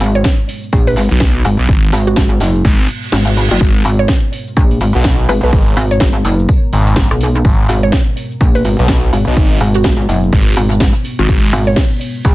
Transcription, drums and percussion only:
0.00 open hi-hat, tambourine, shaker
0.15 shaker
0.24 kick, snare, tambourine, shaker
0.49 open hi-hat, tambourine, shaker
0.63 shaker
0.72 kick, tambourine, shaker
0.87 open hi-hat
0.96 snare, open hi-hat, tambourine, shaker
1.11 shaker
1.20 kick, snare, tambourine, shaker
1.45 open hi-hat, tambourine, shaker
1.59 shaker
1.69 kick, tambourine, shaker
1.93 snare, open hi-hat, tambourine, shaker
2.07 shaker
2.16 kick, snare, tambourine, shaker
2.40 snare, open hi-hat, tambourine, shaker
2.55 shaker
2.65 kick, snare, tambourine, shaker
2.88 open hi-hat, tambourine, shaker
3.03 open hi-hat, shaker
3.12 snare, tambourine, shaker
3.27 closed hi-hat
3.37 open hi-hat, tambourine, shaker
3.51 shaker
3.61 kick, tambourine, shaker
3.85 open hi-hat, tambourine, shaker
3.99 shaker
4.08 kick, snare, tambourine, shaker
4.33 open hi-hat, tambourine, shaker
4.47 shaker
4.56 kick, tambourine, shaker
4.71 open hi-hat
4.81 open hi-hat, tambourine, shaker
4.95 shaker
5.04 kick, snare, tambourine, shaker
5.29 open hi-hat, tambourine, shaker
5.43 shaker
5.53 kick, tambourine, shaker
5.77 open hi-hat, tambourine, shaker
5.91 closed hi-hat, shaker
6.00 kick, snare, tambourine, shaker
6.15 snare
6.25 open hi-hat, tambourine, shaker
6.39 shaker
6.49 kick, tambourine, shaker
6.73 open hi-hat, tambourine, shaker
6.87 closed hi-hat, shaker
6.96 kick, snare, tambourine, shaker
7.11 closed hi-hat
7.20 open hi-hat, tambourine, shaker
7.35 shaker
7.45 kick, tambourine, shaker
7.69 open hi-hat, tambourine, shaker
7.83 shaker
7.92 kick, snare, tambourine, shaker
8.17 open hi-hat, tambourine, shaker
8.31 shaker
8.41 kick, tambourine, shaker
8.55 open hi-hat
8.64 open hi-hat, tambourine, shaker
8.79 shaker
8.88 kick, snare, tambourine, shaker
9.13 open hi-hat, tambourine, shaker
9.27 shaker
9.37 kick, tambourine, shaker
9.61 open hi-hat, tambourine, shaker
9.74 closed hi-hat, shaker
9.84 kick, snare, tambourine, shaker
9.99 snare
10.09 open hi-hat, tambourine, shaker
10.23 shaker
10.32 kick, snare, tambourine, shaker
10.40 snare, tambourine
10.47 snare, tambourine
10.52 snare, tambourine
10.56 open hi-hat, tambourine, shaker
10.71 closed hi-hat, shaker
10.80 kick, snare, tambourine, shaker
10.95 closed hi-hat
11.04 open hi-hat, tambourine, shaker
11.19 shaker
11.29 kick, ride, tambourine, shaker
11.53 open hi-hat, tambourine, shaker
11.67 shaker
11.76 kick, snare, ride, tambourine, shaker
12.01 open hi-hat, tambourine, shaker
12.15 shaker
12.25 kick, ride, tambourine, shaker

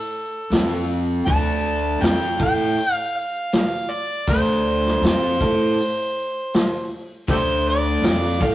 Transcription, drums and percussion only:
0.52 snare, open hi-hat
1.27 kick, open hi-hat
2.02 snare, open hi-hat
2.40 kick
2.78 open hi-hat
3.52 snare, open hi-hat
4.28 kick, open hi-hat
4.86 snare
5.03 snare, open hi-hat
5.41 kick
5.78 open hi-hat
6.54 snare, open hi-hat
7.28 kick, open hi-hat
8.03 snare, open hi-hat
8.41 kick

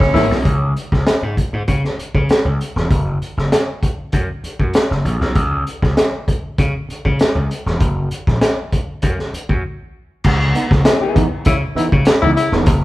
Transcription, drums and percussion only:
0.00 kick, snare
0.15 snare, open hi-hat
0.31 snare
0.45 kick, closed hi-hat
0.77 closed hi-hat
0.92 kick, snare
1.07 snare, closed hi-hat
1.37 kick, closed hi-hat
1.68 kick, closed hi-hat
1.85 snare
1.99 closed hi-hat
2.15 kick
2.29 snare, closed hi-hat
2.61 closed hi-hat
2.77 snare
2.90 kick, closed hi-hat
3.22 closed hi-hat
3.38 snare
3.52 snare, closed hi-hat
3.83 kick, closed hi-hat
4.12 kick, closed hi-hat
4.44 closed hi-hat
4.60 kick
4.74 snare, closed hi-hat
4.92 snare
5.05 closed hi-hat
5.21 snare
5.35 kick, closed hi-hat
5.67 closed hi-hat
5.82 kick, snare
5.97 snare, closed hi-hat
6.28 kick, closed hi-hat
6.58 kick, closed hi-hat
6.90 closed hi-hat
7.05 kick
7.19 snare, closed hi-hat
7.51 closed hi-hat
7.67 snare
7.80 kick, closed hi-hat
8.11 closed hi-hat
8.27 kick, snare
8.41 snare, closed hi-hat
8.72 kick, closed hi-hat
9.02 kick, closed hi-hat
9.19 snare
9.34 closed hi-hat
9.49 kick
10.24 kick, crash
10.55 closed hi-hat
10.71 kick, snare
10.85 snare, closed hi-hat
11.16 kick, closed hi-hat
11.45 kick, closed hi-hat
11.77 closed hi-hat
11.92 kick
12.05 snare, closed hi-hat
12.37 closed hi-hat
12.52 snare
12.66 kick, closed hi-hat

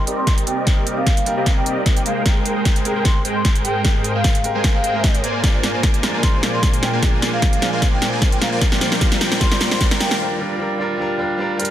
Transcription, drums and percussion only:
0.07 closed hi-hat
0.27 kick, snare, closed hi-hat
0.38 closed hi-hat
0.47 closed hi-hat
0.67 kick, snare, closed hi-hat
0.87 closed hi-hat
1.07 kick, snare, closed hi-hat
1.17 closed hi-hat
1.26 closed hi-hat
1.46 kick, snare, closed hi-hat
1.66 closed hi-hat
1.86 kick, snare, closed hi-hat
1.97 closed hi-hat
2.06 closed hi-hat
2.26 kick, snare, closed hi-hat
2.46 closed hi-hat
2.65 kick, snare, closed hi-hat
2.76 closed hi-hat
2.85 closed hi-hat
3.05 kick, snare, closed hi-hat
3.25 closed hi-hat
3.45 kick, snare, closed hi-hat
3.56 closed hi-hat
3.65 closed hi-hat
3.85 kick, snare, closed hi-hat
4.04 closed hi-hat
4.24 kick, snare, closed hi-hat
4.35 closed hi-hat
4.44 closed hi-hat
4.64 kick, snare, closed hi-hat
4.84 closed hi-hat
5.04 kick, snare, closed hi-hat
5.15 closed hi-hat
5.24 closed hi-hat
5.44 kick, snare, closed hi-hat
5.63 snare, closed hi-hat
5.83 kick, snare, closed hi-hat
5.94 closed hi-hat
6.03 snare, closed hi-hat
6.23 kick, snare, closed hi-hat
6.43 snare, closed hi-hat
6.63 kick, snare, closed hi-hat
6.73 closed hi-hat
6.83 snare, closed hi-hat
7.03 kick, snare, closed hi-hat
7.22 snare, closed hi-hat
7.42 kick, snare, closed hi-hat
7.53 closed hi-hat
7.62 snare, closed hi-hat
7.82 kick, snare, closed hi-hat
8.02 snare, closed hi-hat
8.22 kick, snare, closed hi-hat
8.32 closed hi-hat
8.42 snare, closed hi-hat
8.61 kick, snare, closed hi-hat
8.72 snare
8.81 snare, closed hi-hat
8.92 snare
9.01 kick, snare, closed hi-hat
9.12 snare, closed hi-hat
9.21 snare, closed hi-hat
9.32 snare
9.41 kick, snare, closed hi-hat
9.52 snare
9.61 snare, closed hi-hat
9.71 snare
9.81 kick, snare, closed hi-hat
9.91 snare, closed hi-hat
10.01 snare, closed hi-hat
10.11 snare
11.60 closed hi-hat
11.65 closed hi-hat

